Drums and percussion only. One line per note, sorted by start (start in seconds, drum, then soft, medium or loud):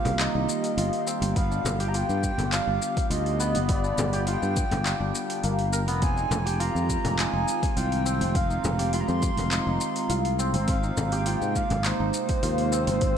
0.05 open hi-hat soft
0.05 frame drum medium
0.05 shaker soft
0.19 clap medium
0.19 open hi-hat medium
0.19 shaker soft
0.49 shaker medium
0.64 open hi-hat soft
0.64 shaker soft
0.78 open hi-hat medium
0.78 shaker soft
0.93 open hi-hat soft
1.07 shaker medium
1.22 open hi-hat soft
1.22 shaker soft
1.36 kick loud
1.36 open hi-hat medium
1.36 shaker soft
1.52 shaker soft
1.65 frame drum loud
1.65 shaker medium
1.80 open hi-hat soft
1.80 shaker soft
1.94 open hi-hat medium
1.94 shaker soft
2.09 shaker soft
2.23 kick medium
2.23 shaker medium
2.38 open hi-hat soft
2.38 frame drum medium
2.38 shaker soft
2.52 clap medium
2.52 open hi-hat medium
2.52 shaker soft
2.82 shaker medium
2.97 kick loud
2.97 open hi-hat soft
2.97 shaker soft
3.11 open hi-hat medium
3.11 shaker soft
3.26 open hi-hat soft
3.40 shaker medium
3.55 open hi-hat soft
3.55 shaker soft
3.69 kick loud
3.69 open hi-hat medium
3.69 shaker soft
3.84 shaker soft
3.98 frame drum loud
3.98 shaker medium
4.13 open hi-hat soft
4.13 shaker soft
4.27 open hi-hat medium
4.27 shaker soft
4.43 shaker soft
4.56 kick loud
4.56 shaker medium
4.71 open hi-hat soft
4.71 frame drum medium
4.71 shaker soft
4.86 clap medium
4.86 open hi-hat medium
4.86 shaker soft
5.15 shaker medium
5.30 open hi-hat soft
5.30 shaker soft
5.44 open hi-hat medium
5.44 shaker soft
5.59 open hi-hat soft
5.73 shaker medium
5.88 open hi-hat soft
5.88 shaker soft
6.02 kick loud
6.02 open hi-hat medium
6.02 shaker soft
6.17 shaker soft
6.31 frame drum loud
6.31 shaker medium
6.47 open hi-hat soft
6.47 shaker soft
6.60 open hi-hat medium
6.60 shaker soft
6.76 shaker soft
6.90 kick medium
6.90 shaker medium
7.05 open hi-hat soft
7.05 frame drum medium
7.05 shaker soft
7.19 clap medium
7.19 open hi-hat medium
7.19 shaker soft
7.48 shaker medium
7.63 kick loud
7.63 open hi-hat soft
7.63 shaker soft
7.77 open hi-hat medium
7.77 shaker soft
7.92 open hi-hat soft
8.06 shaker medium
8.21 open hi-hat soft
8.21 shaker soft
8.35 kick loud
8.35 open hi-hat medium
8.35 shaker soft
8.50 shaker soft
8.64 frame drum medium
8.64 shaker medium
8.79 open hi-hat soft
8.79 shaker soft
8.93 open hi-hat medium
8.93 shaker soft
9.08 shaker soft
9.22 kick loud
9.22 shaker medium
9.37 open hi-hat soft
9.37 frame drum medium
9.37 shaker soft
9.51 clap medium
9.51 open hi-hat medium
9.51 shaker soft
9.81 shaker medium
9.96 open hi-hat soft
9.96 shaker soft
10.10 open hi-hat medium
10.10 shaker soft
10.25 open hi-hat soft
10.39 shaker medium
10.54 open hi-hat soft
10.54 shaker soft
10.68 kick loud
10.68 open hi-hat medium
10.68 shaker soft
10.83 shaker soft
10.97 frame drum medium
10.97 shaker medium
11.12 open hi-hat soft
11.12 shaker soft
11.26 open hi-hat medium
11.26 shaker soft
11.42 shaker soft
11.56 kick medium
11.56 shaker medium
11.70 open hi-hat soft
11.70 frame drum medium
11.70 shaker soft
11.84 clap medium
11.84 open hi-hat medium
11.84 shaker soft
12.14 shaker medium
12.29 kick medium
12.29 open hi-hat soft
12.29 shaker soft
12.43 open hi-hat medium
12.43 shaker soft
12.58 open hi-hat soft
12.72 shaker medium
12.87 open hi-hat soft
12.87 shaker soft
13.01 kick loud
13.01 open hi-hat medium
13.01 shaker soft